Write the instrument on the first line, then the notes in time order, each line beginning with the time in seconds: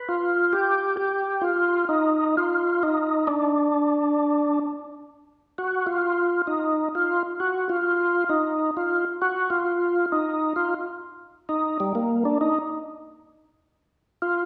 tonewheel organ
0.09 F4
0.53 G4
0.97 G4
1.42 F4
1.89 D#4
2.37 F4
2.83 D#4
3.27 D4
5.58 F#4
5.87 F4
6.47 D#4
6.95 F4
7.40 F#4
7.69 F4
8.29 D#4
8.77 F4
9.22 F#4
9.50 F4
10.12 D#4
10.56 F4
11.49 D#4
11.80 G3
11.95 A#3
12.25 D4
12.41 D#4
14.22 F4